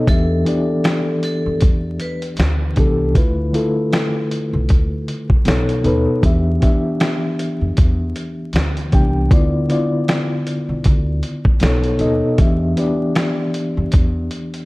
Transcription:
0.07 E2 E3 B3 A4 E5, kick, closed hi-hat
0.45 E3 B3 D4 G4 D5, closed hi-hat
0.84 finger snap, snare, closed hi-hat
1.23 A4, closed hi-hat
1.46 F2
1.61 E2, kick, closed hi-hat
2.00 B4, closed hi-hat
2.22 closed hi-hat
2.37 D2, finger snap, snare, closed hi-hat
2.76 C2 E3 B3 D4 G4 A4, kick, closed hi-hat
3.14 D2 D3 A3 E4 F4 B4, kick, closed hi-hat
3.53 D3 A3 E4 F4 A4, closed hi-hat
3.93 finger snap, snare, closed hi-hat
4.31 closed hi-hat
4.53 B1
4.69 D2, kick, closed hi-hat
5.08 closed hi-hat
5.30 kick
5.45 B1 B2 B3 D#4 A4 C#5, finger snap, snare, closed hi-hat
5.69 closed hi-hat
5.83 D#2 B2 B3 D#4 A4 B4, closed hi-hat
6.22 E2 E3 B3 D4 G4 E5, kick, closed hi-hat
6.60 E3 B3 D4 G4 E5, kick, closed hi-hat
7.00 finger snap, snare, closed hi-hat
7.39 closed hi-hat
7.61 F2
7.77 E2, kick, closed hi-hat
8.16 closed hi-hat
8.53 D2, finger snap, snare, closed hi-hat
8.77 closed hi-hat
8.91 C2 E3 B3 D4 G4 G5, kick, closed hi-hat
9.30 D2 D3 B3 E4 F4 D5, kick, closed hi-hat
9.68 D3 B3 E4 F4 D5, closed hi-hat
10.08 finger snap, snare, closed hi-hat
10.47 closed hi-hat
10.69 B1
10.84 D2, kick, closed hi-hat
11.23 closed hi-hat
11.45 kick
11.60 B1 B2 B3 D#4 A4 C#5, finger snap, snare, closed hi-hat
11.84 closed hi-hat
11.98 D#2 B2 B3 D#4 A4 D#5, closed hi-hat
12.38 E2 E3 B3 D4 G4 E5, kick, closed hi-hat
12.76 E3 B3 D4 G4 D5, closed hi-hat
13.15 finger snap, snare, closed hi-hat
13.54 closed hi-hat
13.77 F2
13.92 E2, kick, closed hi-hat
14.31 closed hi-hat
14.54 closed hi-hat

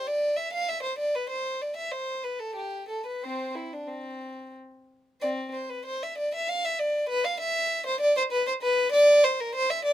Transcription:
0.07 D5
0.36 E5
0.53 F5
0.69 E5
0.83 C5
0.98 D5
1.15 B4
1.30 C5
1.61 D5
1.77 E5
1.92 C5
2.24 B4
2.39 A4
2.56 G4
2.89 A4
3.06 B4
3.23 C4 C5
3.55 E4
3.73 D4
3.88 C4
5.21 C4 D5
5.53 C5
5.69 B4
5.85 C5
6.03 E5
6.18 D5
6.35 E5
6.49 F5
6.65 E5
6.79 D5
7.09 B4
7.25 F5
7.40 E5
7.86 C5
8.01 D5
8.17 C5
8.32 B4
8.47 C5
8.62 B4
8.92 D5
9.24 C5
9.40 A#4
9.55 C5
9.70 E5
9.85 D5

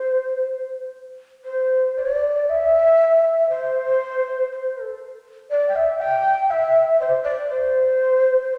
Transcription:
Already playing: C5
1.44 C5
1.97 D5
2.05 D5
2.13 D5
2.19 D5
2.29 D5
2.34 D5
2.49 E5
3.50 C5
4.52 C5
4.83 A4
5.50 D5
5.69 G5
5.75 E5
5.99 G5
6.49 E5
7.00 C5
7.23 D5
7.45 D5
7.49 C5
8.52 C5

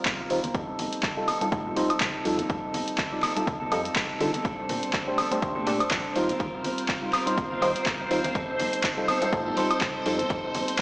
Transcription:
0.05 A#1 G3 C4 F4 A#4, kick, clap, closed hi-hat, tambourine, high conga, low conga
0.19 D#1, tambourine
0.29 D#2 G3 C4 D#4 F4 A#4 C5, open hi-hat
0.43 D#1 C4 F4 A#4, closed hi-hat, tambourine, high conga
0.54 F2 G3 C4 D#4 A4, kick, closed hi-hat
0.67 tambourine, low conga
0.79 F1, open hi-hat, tambourine, high conga
0.93 closed hi-hat, tambourine
1.02 G3 C4 D#4 A4, kick, clap, closed hi-hat
1.17 G3 D#4 F4 A4
1.27 G3 C4 D#4 A4, open hi-hat, tambourine, high conga, high woodblock
1.41 G3 D#4 F4 A4, closed hi-hat, tambourine, low conga
1.52 A2 G3 D#4 F4 A4, kick, closed hi-hat
1.65 C4 D#4 A4, tambourine, high conga
1.75 F1 G3 C4 D#4 F4 A4 C5, open hi-hat, tambourine
1.89 C2 C4 D#4 A4, closed hi-hat, tambourine, high woodblock
2.00 C2 G3 C4 D#4 A4, kick, clap, closed hi-hat, tambourine, high conga, low conga
2.16 tambourine
2.24 F2 G3 C4 D#4 F4 A4, open hi-hat
2.37 C4 D#4 A4, closed hi-hat, tambourine, high conga
2.49 F2 G3 C4 D#4 A4, kick, closed hi-hat
2.64 tambourine, low conga
2.74 F1, open hi-hat, tambourine, high conga
2.88 closed hi-hat, tambourine
2.98 G3 C4 D#4 A4, kick, clap, closed hi-hat
3.12 G3 D#4 F4 D5
3.22 G3 C4 D#4 A4, clap, open hi-hat, tambourine, high conga, high woodblock
3.35 G3 C4 D#4 F4 A4, closed hi-hat, tambourine, low conga
3.47 C2, kick, closed hi-hat
3.60 C4 D#4 A4, tambourine, high conga
3.71 F2 G3 C4 D#4 F4 A4, open hi-hat, tambourine, high woodblock
3.84 C4 D#4 A4, closed hi-hat, tambourine
3.95 G3 C4 D#4 A4, kick, clap, closed hi-hat, tambourine, high conga, low conga
4.10 tambourine
4.19 D3 G3 C4 D#4 F4 A4, open hi-hat, tambourine
4.33 C4 D#4 A4, closed hi-hat, tambourine, high conga
4.44 A#1 G3 C4 D4 A4 C5, kick, closed hi-hat
4.59 tambourine, low conga
4.69 A#2, open hi-hat, tambourine, high conga
4.83 closed hi-hat, tambourine
4.93 G3 C4 D4 A4, kick, clap, closed hi-hat
5.07 A3 D4 G4 C5, tambourine
5.17 G3 C4 D4 A4, open hi-hat, tambourine, high conga, high woodblock
5.31 A3 D4 G4 C5, closed hi-hat, tambourine, low conga
5.42 D2 A3 D4 G4 C5, kick, closed hi-hat, tambourine
5.55 C4 D4 A4, tambourine, high conga
5.66 A#2 G3 A3 C4 D4 G4 A4 D5, open hi-hat, tambourine
5.79 F2 C4 D4 A4, closed hi-hat, tambourine, high woodblock
5.90 F2 G3 C4 D4 A4, kick, clap, closed hi-hat, tambourine, high conga, low conga
6.05 tambourine
6.15 D#2 G3 C4 D#4 F4 A#4 C5, open hi-hat, tambourine
6.28 C4 F4 A#4, closed hi-hat, tambourine, high conga
6.39 D#2 G3 C4 F4 A#4, kick, closed hi-hat, tambourine
6.53 tambourine, low conga
6.64 D#1, open hi-hat, tambourine, high conga
6.78 closed hi-hat, tambourine
6.88 G3 C4 F4 A#4, kick, clap, closed hi-hat
7.02 G3 D#4 F4 F5, tambourine
7.12 G3 C4 F4 A#4, clap, open hi-hat, tambourine, high conga, high woodblock
7.26 G3 C4 D#4 F4 A#4 C5, closed hi-hat, tambourine, low conga
7.38 A#1, kick, closed hi-hat
7.50 C4 F4 A#4, tambourine, high conga
7.61 D#2 G3 C4 D#4 F4 A#4 C5, open hi-hat, tambourine, high woodblock
7.75 A#1 C4 F4 A#4, closed hi-hat, tambourine
7.86 A#1 G3 C4 F4 A#4, kick, clap, closed hi-hat, tambourine, high conga, low conga
8.00 D#1, tambourine
8.10 D#2 G3 C4 D#4 F4 A#4 C5, open hi-hat, tambourine
8.23 D#1 C4 F4 A#4, closed hi-hat, tambourine, high conga
8.35 F2 G3 C4 D#4 A4, kick, closed hi-hat, tambourine
8.48 tambourine, low conga
8.59 F1, open hi-hat, tambourine, high conga
8.73 closed hi-hat, tambourine
8.83 G3 C4 D#4 A4, kick, clap, closed hi-hat
8.97 G3 D#4 F4 A4, tambourine
9.07 G3 C4 D#4 A4, open hi-hat, tambourine, high conga, high woodblock
9.21 G3 C4 D#4 F4 A4, closed hi-hat, tambourine, low conga
9.33 A2 G3 D#4 F4 A4, kick, closed hi-hat, tambourine
9.45 C4 D#4 A4, tambourine, high conga
9.56 F1 G3 C4 D#4 F4 A4 C5, open hi-hat, tambourine
9.71 C2, closed hi-hat, tambourine, high woodblock
9.81 C2 G3 C4 D#4 A4, kick, clap, closed hi-hat, tambourine, high conga, low conga
9.95 tambourine
10.05 F2 G3 C4 D#4 F4 A4, open hi-hat, tambourine
10.18 C4 D#4 A4, closed hi-hat, tambourine, high conga
10.30 F2 G3 C4 D#4 A4, kick, closed hi-hat, tambourine
10.44 tambourine, low conga
10.55 F1, open hi-hat, tambourine, high conga
10.67 closed hi-hat, tambourine
10.78 G3

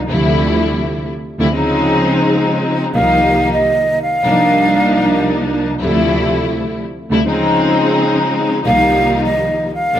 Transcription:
0.08 D2 C3 F3 G3 A3 E4
1.39 D2 C3 F3 G3 A3 E4
1.53 C#3 F3 G#3 C4 D#4
2.94 C2 D#3 F3 G3 A#3 D#4 F5
3.53 D#5
4.02 F5
4.24 C2 F3 G3 A#3 D4 D#4
5.80 D2 C3 F3 G3 A3 E4
7.11 D2 C3 F3 G3 A3 E4
7.25 C#3 F3 G#3 C4 D#4
8.66 C2 D#3 F3 G3 A#3 D#4 F5
9.25 D#5
9.74 F5
9.95 C2 F3 G3 A#3 D4

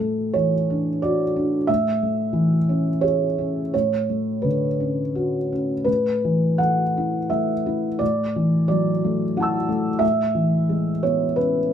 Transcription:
Already playing: A2 A4
0.00 A3
0.34 E3 C#5
0.70 D4
1.02 F#4 D5
1.36 D4
1.67 A2 E5
2.03 A3
2.33 E3
2.69 C#4
3.01 G#4 C#5
3.38 C#4
3.74 A2 C#5
4.09 A3
4.42 D3 B4
4.80 C#4
5.15 F#4
5.53 C#4
5.84 A2 B4
6.25 E3
6.58 A3 F#5
6.97 E4
7.30 A3 E5
7.66 E4
7.99 A2 D5
8.36 E3
8.68 F#3 D5
9.04 A3
9.37 E4 F#5 A5
9.43 E6
9.69 A3
9.99 A2 E5
10.35 E3
10.69 G#3
11.03 B3 C#5
11.36 C#4 B4

